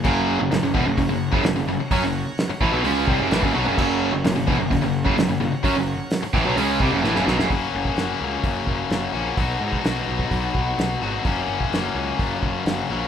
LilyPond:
<<
  \new Staff \with { instrumentName = "Tonewheel organ" } { \time 4/4 \key fis \mixolydian \tempo 4 = 128 <ais' cis'' fis''>1~ | <ais' cis'' fis''>1 | <ais' cis'' fis''>1~ | <ais' cis'' fis''>1 |
r1 | r1 | r1 | }
  \new Staff \with { instrumentName = "Distorted electric guitar" } { \clef bass \time 4/4 \key fis \mixolydian <fis, cis fis>8. <fis, cis>16 <fis, cis>16 <fis, cis>16 <e, b,>16 <fis, cis>16 <fis, cis>16 <fis, cis>8 <fis, cis>16 <fis, cis>16 <fis, cis>16 <fis, cis>16 r16 | <fis cis'>16 <fis, cis>8 r8. <a, e>16 <b, fis>16 <cis gis cis'>8 <bis, g>16 <fis, cis>16 <a, e>16 <fis, cis>16 <b, fis>16 <fis, cis>16 | <fis, cis fis>8. <fis, cis>16 <fis, cis>16 <fis, cis>16 <e, b,>16 <fis, cis>16 <fis, cis>16 <fis, cis>8 <fis, cis>16 <fis, cis>16 <fis, cis>16 <fis, cis>16 r16 | <fis cis'>16 <fis, cis>8 r8. <a, e>16 <b, fis>16 <cis gis cis'>8 <bis, g>16 <fis, cis>16 <a, e>16 <fis, cis>16 <b, fis>16 <fis, cis>16 |
<fis, cis fis ais cis' fis'>2.~ <fis, cis fis ais cis' fis'>8 <fis, cis fis ais cis' fis'>8 | <b, fis b dis' fis'>2.~ <b, fis b dis' fis'>8 <b, fis b dis' fis'>8 | <fis, cis fis ais cis' fis'>2.~ <fis, cis fis ais cis' fis'>8 <fis, cis fis ais cis' fis'>8 | }
  \new Staff \with { instrumentName = "Overdriven electric guitar" } { \clef bass \time 4/4 \key fis \mixolydian <fis, cis fis>8. <fis, cis>16 <fis, cis>16 <fis, cis>16 <e, b,>16 <fis, cis>16 <fis, cis>16 <fis, cis>8 <fis, cis>16 <fis, cis>16 <fis, cis>16 <fis, cis>16 r16 | <fis cis'>16 <fis, cis>8 r8. <a, e>16 <b, fis>16 <cis gis cis'>8 <bis, g>16 <fis, cis>16 <a, e>16 <fis, cis>16 <b, fis>16 <fis, cis>16 | <fis, cis fis>8. <fis, cis>16 <fis, cis>16 <fis, cis>16 <e, b,>16 <fis, cis>16 <fis, cis>16 <fis, cis>8 <fis, cis>16 <fis, cis>16 <fis, cis>16 <fis, cis>16 r16 | <fis cis'>16 <fis, cis>8 r8. <a, e>16 <b, fis>16 <cis gis cis'>8 <bis, g>16 <fis, cis>16 <a, e>16 <fis, cis>16 <b, fis>16 <fis, cis>16 |
r1 | r1 | r1 | }
  \new Staff \with { instrumentName = "Picked electric bass" } { \clef bass \time 4/4 \key fis \mixolydian fis,,8. fis,,16 fis,,16 fis,,16 e,,16 fis,,16 fis,,16 fis,,8 fis,,16 fis,,16 fis,,16 fis,,16 r16 | fis,16 fis,,8 r8. a,,16 b,,16 cis,8 bis,,16 fis,,16 a,,16 fis,,16 b,,16 fis,,16 | fis,,8. fis,,16 fis,,16 fis,,16 e,,16 fis,,16 fis,,16 fis,,8 fis,,16 fis,,16 fis,,16 fis,,16 r16 | fis,16 fis,,8 r8. a,,16 b,,16 cis,8 bis,,16 fis,,16 a,,16 fis,,16 b,,16 fis,,16 |
fis,,8 fis,,8 fis,,8 cis,8 fis,,8 fis,,8 fis,,8 ais,,8 | b,,8 gis,8 b,,8 b,,8 b,,8 b,,8 b,,8 gis,,8 | fis,,8 fis,,8 fis,,8 cis,8 fis,,8 fis,,8 fis,,8 ais,,8 | }
  \new DrumStaff \with { instrumentName = "Drums" } \drummode { \time 4/4 <cymc bd>4 <hho sn>8 bd8 <hho bd>8. bd16 <hho sn>4 | <hho bd>4 <hho sn>8 bd8 hho8 bd8 <hho sn>16 bd8. | <cymc bd>4 <hho sn>8 bd8 <hho bd>8. bd16 <hho sn>4 | <hho bd>4 <hho sn>8 bd8 hho8 bd8 sn16 sn16 sn16 sn16 |
<hho bd>8. bd16 <hho sn>4 <hho bd>8 bd8 <hho sn>4 | <hho bd>8. bd16 <hho sn>8. bd16 <hho bd>8 bd8 <hho sn>4 | <hho bd>8. bd16 <hho sn>4 <hho bd>8 bd8 <hho sn>4 | }
>>